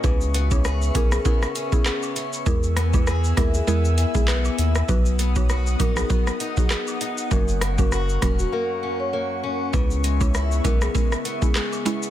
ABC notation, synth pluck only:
X:1
M:4/4
L:1/16
Q:"Swing 16ths" 1/4=99
K:C#dor
V:1 name="Synth pluck"
[B,CEG]3 [B,CEG] z2 [B,CEG] z [B,CEG] z2 [B,CEG] z4 | [G,B,EG]3 [G,B,EG] z2 [G,B,EG] z [G,B,EG] z2 [G,B,EG] z4 | [F,B,DF]3 [F,B,DF] z2 [F,B,DF] z [F,B,DF] z2 [F,B,DF] z4 | [F,A,CF]3 [F,A,CF] z2 [F,A,CF] z8 z |
[G,B,CE]3 [G,B,CE] z2 [G,B,CE] z [G,B,CE] z2 [G,B,CE] z2 [G,B,CE] z |]